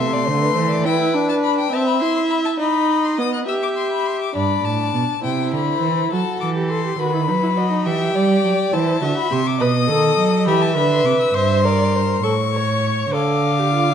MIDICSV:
0, 0, Header, 1, 5, 480
1, 0, Start_track
1, 0, Tempo, 582524
1, 700, Time_signature, 6, 3, 24, 8
1, 8863, Tempo, 596421
1, 11426, End_track
2, 0, Start_track
2, 0, Title_t, "Violin"
2, 0, Program_c, 0, 40
2, 0, Note_on_c, 0, 84, 98
2, 684, Note_off_c, 0, 84, 0
2, 706, Note_on_c, 0, 79, 84
2, 1056, Note_off_c, 0, 79, 0
2, 1063, Note_on_c, 0, 81, 77
2, 1110, Note_off_c, 0, 81, 0
2, 1182, Note_on_c, 0, 83, 77
2, 1298, Note_off_c, 0, 83, 0
2, 1302, Note_on_c, 0, 79, 73
2, 1424, Note_on_c, 0, 81, 80
2, 1436, Note_off_c, 0, 79, 0
2, 1534, Note_off_c, 0, 81, 0
2, 1539, Note_on_c, 0, 83, 74
2, 1652, Note_off_c, 0, 83, 0
2, 1657, Note_on_c, 0, 84, 72
2, 1775, Note_off_c, 0, 84, 0
2, 1780, Note_on_c, 0, 84, 69
2, 1827, Note_off_c, 0, 84, 0
2, 1896, Note_on_c, 0, 83, 77
2, 1944, Note_off_c, 0, 83, 0
2, 2018, Note_on_c, 0, 81, 71
2, 2065, Note_off_c, 0, 81, 0
2, 2142, Note_on_c, 0, 83, 79
2, 2509, Note_on_c, 0, 84, 70
2, 2521, Note_off_c, 0, 83, 0
2, 2623, Note_off_c, 0, 84, 0
2, 2627, Note_on_c, 0, 87, 71
2, 2741, Note_off_c, 0, 87, 0
2, 2746, Note_on_c, 0, 90, 67
2, 2793, Note_off_c, 0, 90, 0
2, 2872, Note_on_c, 0, 88, 72
2, 2918, Note_off_c, 0, 88, 0
2, 2988, Note_on_c, 0, 86, 63
2, 3035, Note_off_c, 0, 86, 0
2, 3101, Note_on_c, 0, 84, 66
2, 3221, Note_off_c, 0, 84, 0
2, 3228, Note_on_c, 0, 83, 65
2, 3344, Note_on_c, 0, 84, 65
2, 3356, Note_off_c, 0, 83, 0
2, 3465, Note_off_c, 0, 84, 0
2, 3470, Note_on_c, 0, 86, 60
2, 3583, Note_off_c, 0, 86, 0
2, 3588, Note_on_c, 0, 83, 74
2, 3833, Note_on_c, 0, 81, 72
2, 3845, Note_off_c, 0, 83, 0
2, 4312, Note_off_c, 0, 81, 0
2, 4316, Note_on_c, 0, 79, 66
2, 4550, Note_off_c, 0, 79, 0
2, 4560, Note_on_c, 0, 83, 65
2, 5029, Note_off_c, 0, 83, 0
2, 5045, Note_on_c, 0, 81, 68
2, 5274, Note_off_c, 0, 81, 0
2, 5279, Note_on_c, 0, 86, 61
2, 5345, Note_off_c, 0, 86, 0
2, 5521, Note_on_c, 0, 84, 68
2, 5763, Note_on_c, 0, 83, 72
2, 5775, Note_off_c, 0, 84, 0
2, 6471, Note_off_c, 0, 83, 0
2, 6476, Note_on_c, 0, 79, 83
2, 7196, Note_on_c, 0, 81, 73
2, 7208, Note_off_c, 0, 79, 0
2, 7551, Note_off_c, 0, 81, 0
2, 7556, Note_on_c, 0, 83, 72
2, 7679, Note_on_c, 0, 84, 76
2, 7692, Note_off_c, 0, 83, 0
2, 7801, Note_on_c, 0, 86, 72
2, 7813, Note_off_c, 0, 84, 0
2, 7917, Note_on_c, 0, 87, 91
2, 7930, Note_off_c, 0, 86, 0
2, 8623, Note_off_c, 0, 87, 0
2, 8628, Note_on_c, 0, 83, 80
2, 8748, Note_on_c, 0, 81, 75
2, 8761, Note_off_c, 0, 83, 0
2, 8862, Note_off_c, 0, 81, 0
2, 8867, Note_on_c, 0, 83, 68
2, 8977, Note_off_c, 0, 83, 0
2, 8982, Note_on_c, 0, 84, 73
2, 9101, Note_on_c, 0, 86, 78
2, 9113, Note_off_c, 0, 84, 0
2, 9214, Note_off_c, 0, 86, 0
2, 9218, Note_on_c, 0, 88, 74
2, 9336, Note_on_c, 0, 84, 89
2, 9348, Note_off_c, 0, 88, 0
2, 10052, Note_on_c, 0, 85, 80
2, 10064, Note_off_c, 0, 84, 0
2, 10770, Note_off_c, 0, 85, 0
2, 10775, Note_on_c, 0, 86, 85
2, 11426, Note_off_c, 0, 86, 0
2, 11426, End_track
3, 0, Start_track
3, 0, Title_t, "Violin"
3, 0, Program_c, 1, 40
3, 0, Note_on_c, 1, 76, 79
3, 105, Note_on_c, 1, 74, 72
3, 118, Note_off_c, 1, 76, 0
3, 221, Note_on_c, 1, 72, 67
3, 233, Note_off_c, 1, 74, 0
3, 327, Note_off_c, 1, 72, 0
3, 332, Note_on_c, 1, 71, 76
3, 455, Note_on_c, 1, 72, 77
3, 467, Note_off_c, 1, 71, 0
3, 566, Note_off_c, 1, 72, 0
3, 571, Note_on_c, 1, 74, 79
3, 694, Note_on_c, 1, 71, 92
3, 707, Note_off_c, 1, 74, 0
3, 1413, Note_off_c, 1, 71, 0
3, 1418, Note_on_c, 1, 76, 91
3, 2120, Note_off_c, 1, 76, 0
3, 2139, Note_on_c, 1, 75, 82
3, 2847, Note_off_c, 1, 75, 0
3, 2857, Note_on_c, 1, 76, 73
3, 3571, Note_off_c, 1, 76, 0
3, 3585, Note_on_c, 1, 74, 69
3, 4276, Note_off_c, 1, 74, 0
3, 4314, Note_on_c, 1, 72, 67
3, 5023, Note_off_c, 1, 72, 0
3, 5037, Note_on_c, 1, 69, 67
3, 5744, Note_off_c, 1, 69, 0
3, 5756, Note_on_c, 1, 71, 70
3, 5991, Note_off_c, 1, 71, 0
3, 6004, Note_on_c, 1, 71, 67
3, 6238, Note_on_c, 1, 75, 71
3, 6250, Note_off_c, 1, 71, 0
3, 6479, Note_on_c, 1, 76, 81
3, 6492, Note_off_c, 1, 75, 0
3, 6720, Note_on_c, 1, 74, 80
3, 6732, Note_off_c, 1, 76, 0
3, 7193, Note_on_c, 1, 72, 92
3, 7206, Note_off_c, 1, 74, 0
3, 7426, Note_off_c, 1, 72, 0
3, 7431, Note_on_c, 1, 76, 82
3, 7898, Note_off_c, 1, 76, 0
3, 7912, Note_on_c, 1, 75, 88
3, 8633, Note_on_c, 1, 76, 89
3, 8645, Note_off_c, 1, 75, 0
3, 9340, Note_off_c, 1, 76, 0
3, 9347, Note_on_c, 1, 76, 83
3, 9574, Note_off_c, 1, 76, 0
3, 9582, Note_on_c, 1, 74, 76
3, 9826, Note_on_c, 1, 72, 70
3, 9838, Note_off_c, 1, 74, 0
3, 10054, Note_off_c, 1, 72, 0
3, 10059, Note_on_c, 1, 73, 77
3, 10787, Note_on_c, 1, 77, 83
3, 10800, Note_off_c, 1, 73, 0
3, 11426, Note_off_c, 1, 77, 0
3, 11426, End_track
4, 0, Start_track
4, 0, Title_t, "Viola"
4, 0, Program_c, 2, 41
4, 0, Note_on_c, 2, 57, 80
4, 702, Note_on_c, 2, 64, 98
4, 714, Note_off_c, 2, 57, 0
4, 940, Note_on_c, 2, 62, 95
4, 952, Note_off_c, 2, 64, 0
4, 1414, Note_off_c, 2, 62, 0
4, 1419, Note_on_c, 2, 60, 93
4, 1660, Note_on_c, 2, 64, 87
4, 1672, Note_off_c, 2, 60, 0
4, 2131, Note_off_c, 2, 64, 0
4, 2136, Note_on_c, 2, 63, 96
4, 2622, Note_on_c, 2, 59, 82
4, 2634, Note_off_c, 2, 63, 0
4, 2860, Note_off_c, 2, 59, 0
4, 2865, Note_on_c, 2, 67, 84
4, 3575, Note_off_c, 2, 67, 0
4, 3591, Note_on_c, 2, 62, 67
4, 4278, Note_off_c, 2, 62, 0
4, 4315, Note_on_c, 2, 64, 65
4, 5043, Note_on_c, 2, 66, 68
4, 5056, Note_off_c, 2, 64, 0
4, 5396, Note_off_c, 2, 66, 0
4, 5401, Note_on_c, 2, 67, 59
4, 5523, Note_on_c, 2, 69, 59
4, 5535, Note_off_c, 2, 67, 0
4, 5635, Note_off_c, 2, 69, 0
4, 5640, Note_on_c, 2, 67, 62
4, 5756, Note_off_c, 2, 67, 0
4, 5762, Note_on_c, 2, 66, 66
4, 5875, Note_off_c, 2, 66, 0
4, 5880, Note_on_c, 2, 64, 60
4, 5928, Note_off_c, 2, 64, 0
4, 5994, Note_on_c, 2, 63, 64
4, 6042, Note_off_c, 2, 63, 0
4, 6117, Note_on_c, 2, 64, 63
4, 6165, Note_off_c, 2, 64, 0
4, 6235, Note_on_c, 2, 66, 67
4, 6353, Note_off_c, 2, 66, 0
4, 6361, Note_on_c, 2, 63, 62
4, 6476, Note_on_c, 2, 67, 72
4, 6489, Note_off_c, 2, 63, 0
4, 7190, Note_on_c, 2, 64, 76
4, 7202, Note_off_c, 2, 67, 0
4, 7430, Note_on_c, 2, 66, 69
4, 7443, Note_off_c, 2, 64, 0
4, 7663, Note_off_c, 2, 66, 0
4, 7668, Note_on_c, 2, 67, 70
4, 7734, Note_off_c, 2, 67, 0
4, 7912, Note_on_c, 2, 71, 90
4, 7978, Note_off_c, 2, 71, 0
4, 8147, Note_on_c, 2, 69, 92
4, 8615, Note_off_c, 2, 69, 0
4, 8629, Note_on_c, 2, 67, 88
4, 8861, Note_off_c, 2, 67, 0
4, 8866, Note_on_c, 2, 71, 87
4, 9343, Note_on_c, 2, 72, 88
4, 9355, Note_off_c, 2, 71, 0
4, 9576, Note_on_c, 2, 70, 89
4, 9588, Note_off_c, 2, 72, 0
4, 10049, Note_off_c, 2, 70, 0
4, 10054, Note_on_c, 2, 69, 83
4, 10118, Note_off_c, 2, 69, 0
4, 10290, Note_on_c, 2, 73, 78
4, 10773, Note_on_c, 2, 69, 71
4, 10785, Note_off_c, 2, 73, 0
4, 11143, Note_on_c, 2, 67, 65
4, 11155, Note_off_c, 2, 69, 0
4, 11259, Note_off_c, 2, 67, 0
4, 11264, Note_on_c, 2, 65, 65
4, 11383, Note_on_c, 2, 64, 63
4, 11395, Note_off_c, 2, 65, 0
4, 11426, Note_off_c, 2, 64, 0
4, 11426, End_track
5, 0, Start_track
5, 0, Title_t, "Cello"
5, 0, Program_c, 3, 42
5, 0, Note_on_c, 3, 48, 72
5, 225, Note_on_c, 3, 50, 78
5, 238, Note_off_c, 3, 48, 0
5, 456, Note_off_c, 3, 50, 0
5, 461, Note_on_c, 3, 52, 74
5, 695, Note_off_c, 3, 52, 0
5, 3584, Note_on_c, 3, 43, 58
5, 3808, Note_off_c, 3, 43, 0
5, 3822, Note_on_c, 3, 45, 59
5, 4060, Note_off_c, 3, 45, 0
5, 4066, Note_on_c, 3, 47, 59
5, 4132, Note_off_c, 3, 47, 0
5, 4309, Note_on_c, 3, 48, 60
5, 4552, Note_on_c, 3, 50, 64
5, 4565, Note_off_c, 3, 48, 0
5, 4788, Note_off_c, 3, 50, 0
5, 4793, Note_on_c, 3, 52, 61
5, 5030, Note_off_c, 3, 52, 0
5, 5036, Note_on_c, 3, 54, 73
5, 5102, Note_off_c, 3, 54, 0
5, 5277, Note_on_c, 3, 52, 69
5, 5748, Note_off_c, 3, 52, 0
5, 5761, Note_on_c, 3, 51, 74
5, 5998, Note_on_c, 3, 54, 78
5, 6011, Note_off_c, 3, 51, 0
5, 6475, Note_on_c, 3, 52, 70
5, 6488, Note_off_c, 3, 54, 0
5, 6709, Note_off_c, 3, 52, 0
5, 6714, Note_on_c, 3, 55, 64
5, 6947, Note_off_c, 3, 55, 0
5, 6953, Note_on_c, 3, 54, 71
5, 7019, Note_off_c, 3, 54, 0
5, 7191, Note_on_c, 3, 52, 69
5, 7424, Note_off_c, 3, 52, 0
5, 7432, Note_on_c, 3, 50, 73
5, 7498, Note_off_c, 3, 50, 0
5, 7674, Note_on_c, 3, 48, 71
5, 7908, Note_on_c, 3, 47, 74
5, 7921, Note_off_c, 3, 48, 0
5, 8148, Note_on_c, 3, 51, 75
5, 8160, Note_off_c, 3, 47, 0
5, 8378, Note_off_c, 3, 51, 0
5, 8383, Note_on_c, 3, 54, 77
5, 8622, Note_on_c, 3, 52, 77
5, 8635, Note_off_c, 3, 54, 0
5, 8866, Note_on_c, 3, 50, 74
5, 8878, Note_off_c, 3, 52, 0
5, 9092, Note_off_c, 3, 50, 0
5, 9097, Note_on_c, 3, 48, 75
5, 9161, Note_off_c, 3, 48, 0
5, 9331, Note_on_c, 3, 43, 79
5, 10033, Note_off_c, 3, 43, 0
5, 10046, Note_on_c, 3, 45, 72
5, 10758, Note_off_c, 3, 45, 0
5, 10771, Note_on_c, 3, 50, 71
5, 11426, Note_off_c, 3, 50, 0
5, 11426, End_track
0, 0, End_of_file